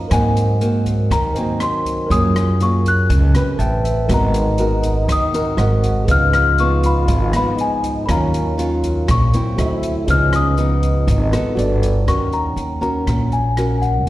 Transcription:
Already playing: tine electric piano A#3 A#4 C#5 D#5 F5
0.08 nylon-string guitar G#2 F#3 A#3 C4, upright bass G#2, tine electric piano A#4 C5 D#5, kick, cross-stick, closed hi-hat
0.12 tine electric piano F#5, celesta G#5
0.37 closed hi-hat
0.61 nylon-string guitar F#3 A#3 C4, closed hi-hat
0.86 kick, closed hi-hat
1.11 upright bass D#2, nylon-string guitar D#3, celesta A#5, kick, cross-stick, closed hi-hat
1.34 nylon-string guitar F#3 A#3 C4, tine electric piano A#4 C5 D#5 G#5, closed hi-hat
1.60 celesta C6, cross-stick, closed hi-hat
1.85 kick, closed hi-hat
2.07 upright bass F#2, nylon-string guitar F#3, tine electric piano A#4 C#5, kick
2.11 nylon-string guitar A#3 F4 G#4, tine electric piano F4 G#5, celesta D#6, closed hi-hat
2.36 cross-stick, closed hi-hat
2.60 nylon-string guitar A#3 F4 G#4, celesta C#6, closed hi-hat
2.85 celesta F#6, kick, closed hi-hat
3.09 upright bass C#2, nylon-string guitar C#3, kick, closed hi-hat
3.35 nylon-string guitar C4 G4 B4, cross-stick, closed hi-hat
3.58 upright bass A1, tine electric piano B4 E5 G5 A5, closed hi-hat
3.84 tine electric piano E5, kick, closed hi-hat
4.06 upright bass G#1, nylon-string guitar G#3 B3, trombone D#4, tine electric piano A#4 D#5, kick, cross-stick, closed hi-hat
4.10 nylon-string guitar F#4 A#4, tine electric piano F#5
4.14 celesta A#5
4.34 closed hi-hat
4.58 nylon-string guitar B3 F#4 A#4, closed hi-hat
4.83 kick, closed hi-hat
5.08 upright bass D#2, nylon-string guitar D#3, kick, cross-stick, closed hi-hat
5.12 celesta D#6
5.34 nylon-string guitar C4 F#4 A#4, closed hi-hat
5.57 upright bass G#1, trombone F#4, tine electric piano A#4 C5 D#5 F#5, cross-stick, closed hi-hat
5.83 kick, closed hi-hat
6.05 upright bass C#2, nylon-string guitar C#3 F3 B3 D#4, trombone F4, tine electric piano G#4 B4, kick, closed hi-hat
6.09 tine electric piano D#5 F5, celesta F6
6.33 celesta F6, cross-stick, closed hi-hat
6.58 nylon-string guitar F3 B3 D#4, celesta C#6, closed hi-hat
6.83 celesta B5, kick, closed hi-hat
7.08 upright bass G#1, nylon-string guitar G#2, kick, closed hi-hat
7.33 nylon-string guitar F3 B3 D#4, celesta B5, cross-stick, closed hi-hat
7.57 trombone D#4, celesta G#5, closed hi-hat
7.83 kick, closed hi-hat
8.06 upright bass D#2, nylon-string guitar D#3 F#3 C#4 F4, trombone C#4, tine electric piano A#4 C#5, celesta B5, kick, cross-stick, closed hi-hat
8.11 tine electric piano F5, celesta A#5
8.34 closed hi-hat
8.57 nylon-string guitar F#3 C#4 F4, trombone F4, closed hi-hat
8.83 kick, closed hi-hat
9.07 upright bass A#1, nylon-string guitar A#2, celesta C#6, kick, cross-stick, closed hi-hat
9.33 nylon-string guitar F#3 C4 E4, closed hi-hat
9.57 upright bass D2, trombone E4, tine electric piano F#4 A4 C5 E5, cross-stick, closed hi-hat
9.83 kick, closed hi-hat
10.05 upright bass C#2, nylon-string guitar C#3 F3 B3, trombone C#4, tine electric piano F4 G#4, kick, closed hi-hat
10.09 nylon-string guitar D#4, tine electric piano B4 D#5, celesta F6
10.33 celesta D#6, cross-stick, closed hi-hat
10.57 nylon-string guitar F3 B3 D#4, trombone D#4, closed hi-hat
10.83 kick, closed hi-hat
11.07 upright bass G#1, nylon-string guitar G#2, trombone D#4, kick, closed hi-hat
11.32 nylon-string guitar B3 F#4 A4, cross-stick, closed hi-hat
11.55 upright bass G1, trombone D4, tine electric piano F#4 A4 B4 D5, closed hi-hat
11.82 kick, closed hi-hat
12.07 upright bass D#2, nylon-string guitar D#3 C#4 F#4 A#4, celesta C#6, kick, cross-stick, closed hi-hat
12.33 celesta A#5, closed hi-hat
12.56 upright bass D#2, closed hi-hat
12.81 nylon-string guitar C#4 F#4 A#4, celesta A#5, kick, closed hi-hat
13.07 upright bass A#1, nylon-string guitar A#2, kick, cross-stick, closed hi-hat
13.32 celesta G#5, closed hi-hat
13.57 nylon-string guitar C#4 F#4 A#4, cross-stick, closed hi-hat
13.78 celesta F#5 G#5
13.82 kick, closed hi-hat

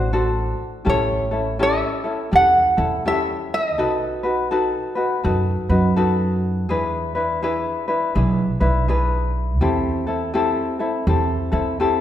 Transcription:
Already playing: upright bass A1, ukulele D4 F#4 C5
0.13 ukulele D4 F#4 A4 C5
0.85 upright bass A1, ukulele C#4 E4 G4 A4
0.89 ukulele C#5
1.31 ukulele C#4 E4 A4
1.59 ukulele C#4 E4 G4 A4 E5
2.04 ukulele C#4 E4 A4
2.31 upright bass E2, ukulele C#4 E4 G4 A4
2.35 ukulele F#5
2.77 upright bass E2, ukulele C#4 E4 A4
3.05 ukulele C#4 E4 G4 A4 E5
3.54 ukulele D#5
3.78 upright bass B1, ukulele D#4 F#4 A4 B4
4.23 ukulele D#4 F#4 B4
4.51 ukulele D#4 F#4 A4 B4
4.95 ukulele D#4 F#4 B4
5.23 upright bass F#2, ukulele D#4 F#4 A4 B4
5.69 upright bass F#2, ukulele D#4 F#4 B4
5.96 ukulele D#4 F#4 A4 B4
6.69 upright bass E2, ukulele D4 E4 G#4 B4
7.15 ukulele D4 E4 B4
7.42 ukulele D4 E4 G#4 B4
7.88 ukulele D4 E4 B4
8.15 upright bass B1, ukulele D4 E4 G#4 B4
8.60 upright bass B1, ukulele D4 E4 B4
8.88 ukulele D4 E4 G#4 B4
9.61 upright bass E2, ukulele C4 E4 G4 A4
10.07 ukulele C4 E4 A4
10.34 ukulele C4 E4 G4 A4
10.79 ukulele C4 E4 A4
11.07 upright bass E2, ukulele C4 E4 G4 A4
11.52 upright bass E2, ukulele C4 E4 A4
11.80 ukulele C4 E4 G4 A4

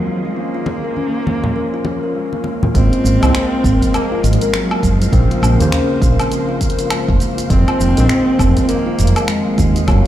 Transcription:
Already playing: tine electric piano D#3 G#3 C4, synth drone D#3 F4 G#4 C5 D#5, cello F#3, synth texture F4 F5
0.07 kalimba G#3
0.25 cello G#3, kalimba F4
0.36 kalimba A#3, cello A#3, tine electric piano A#3 C#4, synth drone C#4
0.54 kalimba F4
0.66 kalimba A#3, muted conga
0.84 kalimba A#4
0.96 kalimba C#4, high conga
1.15 kalimba A#3
1.26 kalimba G#3, high conga
1.44 kalimba F3, synth drone A#4, low conga
1.56 kalimba A#4
1.74 kalimba F4
1.85 kalimba F3, muted conga
2.03 kalimba A#4
2.15 kalimba G#3
2.33 kalimba A#3, muted conga
2.44 kalimba G#3, muted conga
2.63 kalimba F4, high conga, low conga
2.74 fretless electric bass G#1, synth drone G#3, tine electric piano G#3 A#3 C4, kalimba A#3, cello C4, synth texture F4 F5, kick, closed hi-hat, shaker
2.92 kalimba F4, closed hi-hat
3.04 fretless electric bass G#1, kalimba A#3, shaker
3.10 synth drone G#4
3.21 fretless electric bass C2, tine electric piano G#3 A#3 C4, kalimba A#4, closed hi-hat, low woodblock, shaker
3.34 kalimba C4, finger snap, closed hi-hat, shaker
3.52 kalimba A#3
3.64 fretless electric bass G#1, kalimba G#3, kick, closed hi-hat, shaker
3.79 kalimba F3, synth drone C5, kick, closed hi-hat
3.83 synth drone D#5, shaker
3.94 cello A#3, kalimba A#4, closed hi-hat, low woodblock, shaker
4.12 kalimba F4
4.23 fretless electric bass G#1, kalimba F3, cello G#3, closed hi-hat, shaker
4.33 closed hi-hat
4.41 kalimba A#4, closed hi-hat, shaker
4.54 cello F#3, kalimba G#3, finger snap, closed hi-hat, shaker
4.71 kalimba A#3, low woodblock
4.83 fretless electric bass F#1, cello F3, kalimba G#3, kick, closed hi-hat, shaker
5.01 kalimba F4, closed hi-hat, shaker
5.11 fretless electric bass A#1, tine electric piano C#3 A#3 C4, synth drone A#3, kalimba A#3, kick, closed hi-hat, shaker
5.31 kalimba F4, closed hi-hat
5.42 fretless electric bass A#1, kalimba A#3, low woodblock, shaker
5.58 fretless electric bass D#2, tine electric piano C#3 A#3 C5, kalimba A#4, closed hi-hat, shaker
5.72 kalimba C#4, finger snap, closed hi-hat, shaker
5.90 kalimba A#3
6.02 fretless electric bass A#1, kalimba G#3, kick, closed hi-hat, shaker
6.19 kalimba F3, synth drone F5, closed hi-hat, low woodblock, shaker
6.31 kalimba A#4, closed hi-hat, shaker
6.49 kalimba F4
6.61 kalimba F3, kick, closed hi-hat, shaker
6.70 closed hi-hat
6.79 kalimba A#4, closed hi-hat, shaker
6.90 kalimba G#3, finger snap, closed hi-hat, low woodblock, shaker
7.08 fretless electric bass F1, kalimba A#3, kick
7.20 kalimba G#3, closed hi-hat, shaker
7.37 kalimba F4, closed hi-hat, shaker
7.49 fretless electric bass F1, tine electric piano D#3 G#3 C4, synth drone F3, kalimba A#3, cello C4, kick, closed hi-hat, shaker
7.67 kalimba F4, closed hi-hat, low woodblock
7.79 fretless electric bass F1, kalimba A#3, synth drone F4, shaker
7.96 fretless electric bass A#1, tine electric piano D#3 G#3, kalimba A#4, closed hi-hat, shaker
8.00 tine electric piano C4, synth drone G#4
8.09 kalimba C4, finger snap, closed hi-hat, shaker
8.27 kalimba A#3
8.39 fretless electric bass F1, kick, closed hi-hat, low woodblock, shaker
8.57 kalimba F3, synth drone D#5, kick, closed hi-hat, shaker
8.63 cello C4
8.68 cello A#3, kalimba A#4, closed hi-hat, shaker
8.86 kalimba F4
8.98 fretless electric bass F1, kalimba F3, closed hi-hat, shaker
9.07 closed hi-hat
9.16 kalimba A#4, closed hi-hat, low woodblock, shaker
9.28 kalimba G#3, cello G#3, finger snap, closed hi-hat, shaker
9.46 kalimba A#3
9.58 fretless electric bass D#2, kalimba G#3, kick, closed hi-hat, shaker
9.76 kalimba F4, closed hi-hat, shaker
9.87 fretless electric bass F#1, tine electric piano F#3 A#3 C#4, cello F#3, kalimba A#3, kick, closed hi-hat, low woodblock, shaker

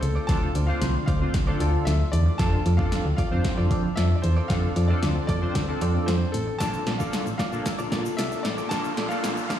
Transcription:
Already playing: ambient pad D3 A3 C4 F4
0.01 fm bass C#2, grand piano A4, muted clean electric guitar stroke, closed hi-hat
0.15 clean electric guitar F4 C5 D5
0.27 fm bass D2, analog polysynth C4 D4 F4 A4, ambient pad D4, clean electric guitar F4 C5 D5, grand piano A5, kick, snare, closed hi-hat
0.42 muted clean electric guitar stroke
0.55 fm bass D2, clean electric guitar F4 C5 D5, closed hi-hat
0.67 analog polysynth C4 D4 F4 C5, clean electric guitar F4 C5 D5, grand piano F5
0.81 fm bass C2, snare, closed hi-hat
0.95 muted clean electric guitar stroke
1.06 fm bass D2, clean electric guitar F4 C5 D5, grand piano F5, kick, closed hi-hat
1.21 analog polysynth C4 D4 F4 C5, muted clean electric guitar stroke
1.34 fm bass C2, muted clean electric guitar stroke, kick, snare, closed hi-hat
1.47 analog polysynth C4 D4 F4 A4, clean electric guitar F4 C5 D5
1.60 fm bass D2, clean electric guitar F4 C5 D5, closed hi-hat
1.74 muted clean electric guitar stroke
1.85 fm bass D2, grand piano E5, muted clean electric guitar stroke, snare, closed hi-hat
2.00 muted clean electric guitar stroke
2.12 fm bass E2, grand piano D5, closed hi-hat
2.26 muted clean electric guitar stroke
2.38 fm bass F2, ambient pad F3 C4 A4, analog polysynth C4 D4 F4 A4, clean electric guitar F4 A4 D5, grand piano A5, kick, snare, closed hi-hat
2.53 muted clean electric guitar stroke
2.66 fm bass F2, clean electric guitar F4 A4 D5, closed hi-hat
2.77 analog polysynth C4 D4 F4 A4, clean electric guitar F4 A4 D5, grand piano F5, kick
2.92 snare, closed hi-hat
3.05 fm bass D2, muted clean electric guitar stroke
3.17 clean electric guitar F4 A4 D5, grand piano F5, kick, closed hi-hat
3.31 fm bass F2, analog polysynth C4 D4 F4 C5, muted clean electric guitar stroke
3.45 muted clean electric guitar stroke, kick, snare, closed hi-hat
3.58 fm bass F2, clean electric guitar F4 A4 D5
3.71 fm bass F3, clean electric guitar F4 A4 D5, kick, closed hi-hat
3.84 muted clean electric guitar stroke
3.96 fm bass F2, clean electric guitar F4 A4 D5, grand piano E5, snare, closed hi-hat
4.10 muted clean electric guitar stroke
4.16 grand piano D5
4.22 fm bass E2, grand piano C5, muted clean electric guitar stroke, closed hi-hat
4.37 clean electric guitar F4 A4 D5
4.48 fm bass F2, analog polysynth C4 D4 F4 A4, clean electric guitar F4 A4 D5, grand piano F5, kick, snare, closed hi-hat
4.63 muted clean electric guitar stroke
4.76 fm bass F2, clean electric guitar F4 A4 D5, closed hi-hat
4.88 analog polysynth C4 D4 F4 A4, clean electric guitar F4 A4 D5, grand piano D5
5.03 fm bass D2, snare, closed hi-hat
5.16 muted clean electric guitar stroke
5.27 fm bass F2, clean electric guitar F4 A4 D5, grand piano D5, kick, closed hi-hat
5.42 analog polysynth C4 D4 F4 C5, muted clean electric guitar stroke
5.55 fm bass D2, muted clean electric guitar stroke, kick, snare, closed hi-hat
5.68 analog polysynth C4 D4 F4 A4, muted clean electric guitar stroke
5.81 fm bass F2, clean electric guitar F4 A4 D5, closed hi-hat
5.94 clean electric guitar F4 A4 D5
6.06 fm bass F2, grand piano C5, snare, closed hi-hat
6.21 muted clean electric guitar stroke
6.32 fm bass A1, grand piano A4, closed hi-hat
6.47 muted clean electric guitar stroke
6.59 fm bass A#1, analog polysynth A#3 D4 F4 A4, ambient pad A#3 D4 A4, clean electric guitar F4 A4 D5, grand piano A5, kick, snare, closed hi-hat, riser, shaker
6.73 muted clean electric guitar stroke, shaker
6.87 fm bass A#1, clean electric guitar F4 A4 D5, snare, closed hi-hat
6.98 analog polysynth A#3 D4 F4 A4, clean electric guitar F4 A4 D5, grand piano F5, kick, shaker
7.13 snare, closed hi-hat, shaker
7.26 fm bass A1, muted clean electric guitar stroke, shaker
7.38 clean electric guitar F4 A4 D5, grand piano F5, kick, snare, closed hi-hat, shaker
7.52 fm bass A#1, analog polysynth A#3 D4 F4 A4, muted clean electric guitar stroke, shaker
7.65 muted clean electric guitar stroke, kick, snare, closed hi-hat, shaker
7.79 fm bass A#1, clean electric guitar F4 A4 D5, shaker
7.92 fm bass A#2, clean electric guitar F4 A4 D5, kick, snare, closed hi-hat, shaker
8.05 muted clean electric guitar stroke, shaker
8.17 fm bass C2, clean electric guitar F4 A4 D5, grand piano E5, snare, closed hi-hat, shaker
8.31 muted clean electric guitar stroke, shaker
8.43 fm bass A1, grand piano D5, muted clean electric guitar stroke, snare, closed hi-hat, shaker
8.58 clean electric guitar F4 A4 D5, shaker
8.69 fm bass A#1, analog polysynth A#3 D4 F4 A4, clean electric guitar F4 A4 D5, grand piano A5, kick, snare, closed hi-hat, shaker
8.84 muted clean electric guitar stroke, shaker
8.97 fm bass A#1, clean electric guitar F4 A4 D5, snare, closed hi-hat
9.09 analog polysynth A#3 D4 F4 A4, clean electric guitar F4 A4 D5, grand piano F5, shaker
9.24 fm bass A1, snare, closed hi-hat, shaker
9.37 muted clean electric guitar stroke, shaker
9.48 fm bass A#1, clean electric guitar F4 A4 D5, grand piano F5, kick, snare, closed hi-hat, shaker

